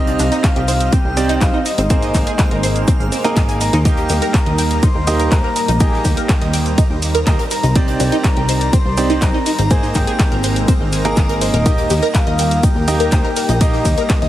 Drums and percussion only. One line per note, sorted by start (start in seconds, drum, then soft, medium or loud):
0.07 closed hi-hat soft
0.19 snare medium
0.19 open hi-hat loud
0.19 shaker medium
0.32 snare soft
0.32 closed hi-hat medium
0.32 shaker soft
0.44 kick loud
0.44 snare loud
0.44 clap loud
0.44 closed hi-hat medium
0.44 shaker medium
0.44 shaker soft
0.56 closed hi-hat soft
0.68 open hi-hat loud
0.68 shaker medium
0.80 snare soft
0.80 closed hi-hat medium
0.80 shaker soft
0.93 kick loud
0.93 closed hi-hat medium
0.93 shaker soft
0.93 shaker medium
1.17 snare medium
1.17 open hi-hat loud
1.17 shaker medium
1.29 closed hi-hat medium
1.29 shaker soft
1.41 kick loud
1.41 snare loud
1.41 clap loud
1.41 closed hi-hat medium
1.41 shaker soft
1.41 shaker loud
1.66 open hi-hat loud
1.66 shaker medium
1.78 closed hi-hat soft
1.78 closed hi-hat medium
1.78 shaker soft
1.90 kick loud
1.90 closed hi-hat medium
1.90 shaker medium
1.90 shaker soft
2.02 snare soft
2.02 closed hi-hat soft
2.02 shaker soft
2.14 kick medium
2.14 clap soft
2.14 open hi-hat loud
2.14 shaker medium
2.27 closed hi-hat medium
2.27 shaker soft
2.39 kick loud
2.39 snare loud
2.39 clap loud
2.39 closed hi-hat medium
2.39 shaker medium
2.39 shaker soft
2.51 snare soft
2.51 closed hi-hat soft
2.63 open hi-hat loud
2.63 shaker medium
2.76 closed hi-hat medium
2.76 shaker soft
2.88 kick loud
2.88 closed hi-hat medium
2.88 shaker medium
2.88 shaker soft
3.00 shaker soft
3.12 open hi-hat loud
3.12 shaker medium
3.24 closed hi-hat medium
3.24 shaker soft
3.36 kick loud
3.36 snare loud
3.36 clap loud
3.36 closed hi-hat medium
3.36 shaker soft
3.36 shaker medium
3.49 closed hi-hat soft
3.49 shaker soft
3.61 open hi-hat loud
3.61 shaker medium
3.73 snare soft
3.73 closed hi-hat medium
3.73 shaker soft
3.85 kick loud
3.85 closed hi-hat medium
3.85 ride medium
3.85 shaker soft
3.85 shaker medium
3.97 closed hi-hat soft
4.09 snare medium
4.09 open hi-hat loud
4.09 ride medium
4.09 shaker medium
4.22 snare medium
4.22 closed hi-hat medium
4.22 shaker soft
4.34 kick loud
4.34 snare loud
4.34 clap loud
4.34 closed hi-hat medium
4.34 ride medium
4.34 shaker soft
4.34 shaker medium
4.46 closed hi-hat soft
4.58 open hi-hat loud
4.58 ride medium
4.58 shaker medium
4.71 snare soft
4.71 closed hi-hat medium
4.71 shaker soft
4.83 kick loud
4.83 closed hi-hat medium
4.83 ride medium
4.83 shaker medium
4.83 shaker soft
5.07 snare medium
5.07 open hi-hat loud
5.07 ride medium
5.07 shaker medium
5.20 closed hi-hat medium
5.20 shaker soft
5.31 kick loud
5.31 snare loud
5.31 clap loud
5.31 closed hi-hat medium
5.31 ride medium
5.31 shaker soft
5.31 shaker medium
5.56 open hi-hat loud
5.56 ride medium
5.56 shaker medium
5.68 closed hi-hat medium
5.68 closed hi-hat soft
5.68 shaker soft
5.80 kick loud
5.80 closed hi-hat medium
5.80 ride medium
5.80 shaker medium
5.80 shaker soft
5.93 snare soft
6.05 kick medium
6.05 open hi-hat loud
6.05 ride medium
6.05 shaker medium
6.17 closed hi-hat medium
6.17 shaker soft
6.29 kick loud
6.29 snare loud
6.29 clap loud
6.29 closed hi-hat medium
6.29 ride medium
6.29 shaker soft
6.29 shaker medium
6.41 snare soft
6.41 closed hi-hat soft
6.53 open hi-hat loud
6.53 ride medium
6.53 shaker medium
6.66 closed hi-hat medium
6.66 shaker soft
6.78 kick loud
6.78 closed hi-hat medium
6.78 ride medium
6.78 shaker soft
6.78 shaker loud
7.02 open hi-hat loud
7.02 ride medium
7.02 shaker medium
7.15 closed hi-hat medium
7.15 shaker soft
7.27 kick loud
7.27 snare loud
7.27 clap loud
7.27 closed hi-hat medium
7.27 ride medium
7.27 shaker soft
7.27 shaker medium
7.39 closed hi-hat soft
7.51 open hi-hat loud
7.51 ride medium
7.51 shaker medium
7.63 closed hi-hat medium
7.63 closed hi-hat soft
7.63 shaker soft
7.75 kick loud
7.75 closed hi-hat medium
7.75 ride medium
7.75 shaker medium
7.75 shaker soft
7.88 closed hi-hat soft
8.00 snare soft
8.00 open hi-hat loud
8.00 ride medium
8.00 shaker medium
8.12 snare medium
8.12 closed hi-hat medium
8.12 shaker soft
8.24 kick loud
8.24 snare loud
8.24 clap loud
8.24 closed hi-hat medium
8.24 ride medium
8.24 shaker medium
8.24 shaker soft
8.37 closed hi-hat soft
8.49 open hi-hat loud
8.49 ride medium
8.49 shaker medium
8.61 snare medium
8.61 closed hi-hat medium
8.61 shaker soft
8.73 kick loud
8.73 closed hi-hat medium
8.73 ride medium
8.73 shaker soft
8.73 shaker loud
8.97 snare medium
8.97 open hi-hat loud
8.97 ride medium
8.97 shaker medium
9.10 closed hi-hat medium
9.10 shaker soft
9.22 kick loud
9.22 snare loud
9.22 clap loud
9.22 closed hi-hat medium
9.22 ride medium
9.22 shaker medium
9.22 shaker soft
9.46 open hi-hat loud
9.46 ride medium
9.46 shaker medium
9.59 closed hi-hat medium
9.59 closed hi-hat soft
9.59 shaker soft
9.70 kick loud
9.70 closed hi-hat medium
9.70 ride medium
9.70 shaker medium
9.70 shaker soft
9.83 snare soft
9.83 shaker soft
9.94 kick medium
9.94 clap soft
9.94 open hi-hat loud
9.94 ride medium
9.94 shaker medium
10.07 closed hi-hat medium
10.07 shaker soft
10.19 kick loud
10.19 snare loud
10.19 clap loud
10.19 closed hi-hat medium
10.19 ride medium
10.19 shaker medium
10.19 shaker soft
10.31 snare soft
10.31 closed hi-hat soft
10.43 open hi-hat loud
10.43 ride medium
10.43 shaker medium
10.56 closed hi-hat medium
10.56 shaker soft
10.68 kick loud
10.68 closed hi-hat medium
10.68 ride medium
10.68 shaker medium
10.68 shaker soft
10.92 open hi-hat loud
10.92 ride medium
10.92 shaker medium
11.05 closed hi-hat medium
11.05 shaker soft
11.16 kick loud
11.16 snare loud
11.16 clap loud
11.16 closed hi-hat medium
11.16 ride medium
11.16 shaker medium
11.16 shaker soft
11.29 closed hi-hat soft
11.41 open hi-hat loud
11.41 ride medium
11.41 shaker medium
11.54 snare soft
11.54 closed hi-hat medium
11.54 shaker soft
11.66 kick loud
11.66 closed hi-hat medium
11.66 ride medium
11.66 shaker soft
11.66 shaker medium
11.78 closed hi-hat soft
11.90 snare soft
11.90 open hi-hat loud
11.90 ride medium
11.90 shaker medium
12.03 snare medium
12.03 closed hi-hat soft
12.03 shaker soft
12.15 kick loud
12.15 snare loud
12.15 clap loud
12.15 closed hi-hat medium
12.15 ride medium
12.15 shaker soft
12.15 shaker medium
12.27 closed hi-hat soft
12.38 open hi-hat loud
12.38 ride medium
12.38 shaker medium
12.51 snare soft
12.51 closed hi-hat medium
12.51 shaker soft
12.63 kick loud
12.63 closed hi-hat medium
12.63 ride medium
12.63 shaker soft
12.63 shaker medium
12.88 snare medium
12.88 open hi-hat loud
12.88 ride medium
12.88 shaker medium
13.00 closed hi-hat medium
13.00 shaker soft
13.12 kick loud
13.12 snare loud
13.12 clap loud
13.12 closed hi-hat medium
13.12 ride medium
13.12 shaker loud
13.12 shaker soft
13.36 open hi-hat loud
13.36 ride medium
13.36 shaker medium
13.49 closed hi-hat soft
13.49 closed hi-hat medium
13.49 shaker soft
13.61 kick loud
13.61 closed hi-hat medium
13.61 ride medium
13.61 shaker soft
13.61 shaker medium
13.73 snare soft
13.85 kick medium
13.85 open hi-hat loud
13.85 ride medium
13.85 shaker medium
13.98 closed hi-hat medium
13.98 shaker soft
14.09 kick loud
14.09 snare loud
14.09 clap loud
14.09 closed hi-hat medium
14.09 ride medium
14.09 shaker medium
14.09 shaker soft
14.22 snare soft
14.22 closed hi-hat soft